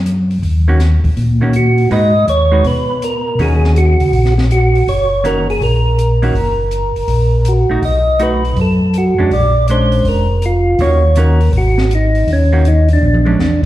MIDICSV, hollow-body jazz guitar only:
0, 0, Header, 1, 2, 480
1, 0, Start_track
1, 0, Tempo, 370370
1, 553, Time_signature, 4, 2, 24, 8
1, 17697, End_track
2, 0, Start_track
2, 0, Title_t, "Hollow-body jazz guitar"
2, 0, Program_c, 0, 26
2, 878, Note_on_c, 0, 51, 58
2, 879, Note_on_c, 0, 58, 64
2, 889, Note_on_c, 0, 61, 64
2, 894, Note_on_c, 0, 66, 73
2, 1021, Note_off_c, 0, 51, 0
2, 1022, Note_off_c, 0, 58, 0
2, 1027, Note_off_c, 0, 61, 0
2, 1029, Note_off_c, 0, 66, 0
2, 1827, Note_on_c, 0, 51, 62
2, 1834, Note_on_c, 0, 58, 62
2, 1842, Note_on_c, 0, 66, 72
2, 1845, Note_on_c, 0, 61, 70
2, 1976, Note_off_c, 0, 51, 0
2, 1979, Note_off_c, 0, 58, 0
2, 1983, Note_off_c, 0, 66, 0
2, 1985, Note_off_c, 0, 61, 0
2, 2474, Note_on_c, 0, 63, 55
2, 2475, Note_on_c, 0, 56, 55
2, 2486, Note_on_c, 0, 71, 61
2, 2489, Note_on_c, 0, 66, 54
2, 2757, Note_off_c, 0, 63, 0
2, 2758, Note_off_c, 0, 56, 0
2, 2763, Note_off_c, 0, 71, 0
2, 2765, Note_off_c, 0, 66, 0
2, 3260, Note_on_c, 0, 56, 70
2, 3263, Note_on_c, 0, 63, 70
2, 3265, Note_on_c, 0, 66, 67
2, 3282, Note_on_c, 0, 71, 66
2, 3412, Note_off_c, 0, 56, 0
2, 3413, Note_off_c, 0, 63, 0
2, 3415, Note_off_c, 0, 66, 0
2, 3423, Note_off_c, 0, 71, 0
2, 4393, Note_on_c, 0, 51, 53
2, 4398, Note_on_c, 0, 58, 54
2, 4408, Note_on_c, 0, 61, 56
2, 4410, Note_on_c, 0, 66, 51
2, 5125, Note_off_c, 0, 51, 0
2, 5128, Note_off_c, 0, 58, 0
2, 5133, Note_off_c, 0, 61, 0
2, 5134, Note_off_c, 0, 66, 0
2, 6789, Note_on_c, 0, 51, 58
2, 6790, Note_on_c, 0, 58, 63
2, 6799, Note_on_c, 0, 61, 56
2, 6800, Note_on_c, 0, 66, 65
2, 7075, Note_off_c, 0, 51, 0
2, 7075, Note_off_c, 0, 58, 0
2, 7080, Note_off_c, 0, 61, 0
2, 7081, Note_off_c, 0, 66, 0
2, 8065, Note_on_c, 0, 58, 72
2, 8067, Note_on_c, 0, 51, 62
2, 8077, Note_on_c, 0, 61, 63
2, 8081, Note_on_c, 0, 66, 76
2, 8214, Note_off_c, 0, 58, 0
2, 8215, Note_off_c, 0, 51, 0
2, 8220, Note_off_c, 0, 61, 0
2, 8222, Note_off_c, 0, 66, 0
2, 9973, Note_on_c, 0, 57, 62
2, 9988, Note_on_c, 0, 63, 63
2, 9993, Note_on_c, 0, 66, 69
2, 10128, Note_off_c, 0, 57, 0
2, 10136, Note_off_c, 0, 63, 0
2, 10138, Note_off_c, 0, 66, 0
2, 10621, Note_on_c, 0, 57, 69
2, 10626, Note_on_c, 0, 63, 67
2, 10628, Note_on_c, 0, 66, 77
2, 10910, Note_off_c, 0, 57, 0
2, 10913, Note_off_c, 0, 63, 0
2, 10914, Note_off_c, 0, 66, 0
2, 11903, Note_on_c, 0, 56, 72
2, 11915, Note_on_c, 0, 61, 59
2, 11925, Note_on_c, 0, 62, 76
2, 12053, Note_off_c, 0, 56, 0
2, 12059, Note_off_c, 0, 61, 0
2, 12064, Note_off_c, 0, 62, 0
2, 12565, Note_on_c, 0, 56, 54
2, 12576, Note_on_c, 0, 62, 65
2, 12577, Note_on_c, 0, 61, 54
2, 13291, Note_off_c, 0, 56, 0
2, 13297, Note_off_c, 0, 61, 0
2, 13297, Note_off_c, 0, 62, 0
2, 14001, Note_on_c, 0, 51, 63
2, 14006, Note_on_c, 0, 58, 66
2, 14010, Note_on_c, 0, 61, 67
2, 14013, Note_on_c, 0, 66, 62
2, 14281, Note_off_c, 0, 51, 0
2, 14283, Note_off_c, 0, 58, 0
2, 14285, Note_off_c, 0, 61, 0
2, 14287, Note_off_c, 0, 66, 0
2, 14471, Note_on_c, 0, 51, 66
2, 14479, Note_on_c, 0, 58, 60
2, 14481, Note_on_c, 0, 61, 61
2, 14487, Note_on_c, 0, 66, 65
2, 14756, Note_off_c, 0, 51, 0
2, 14760, Note_off_c, 0, 58, 0
2, 14761, Note_off_c, 0, 61, 0
2, 14764, Note_off_c, 0, 66, 0
2, 16232, Note_on_c, 0, 58, 58
2, 16233, Note_on_c, 0, 51, 69
2, 16235, Note_on_c, 0, 61, 65
2, 16245, Note_on_c, 0, 66, 69
2, 16378, Note_off_c, 0, 58, 0
2, 16379, Note_off_c, 0, 51, 0
2, 16380, Note_off_c, 0, 61, 0
2, 16385, Note_off_c, 0, 66, 0
2, 17177, Note_on_c, 0, 56, 61
2, 17193, Note_on_c, 0, 61, 60
2, 17197, Note_on_c, 0, 62, 65
2, 17332, Note_off_c, 0, 56, 0
2, 17339, Note_off_c, 0, 61, 0
2, 17341, Note_off_c, 0, 62, 0
2, 17697, End_track
0, 0, End_of_file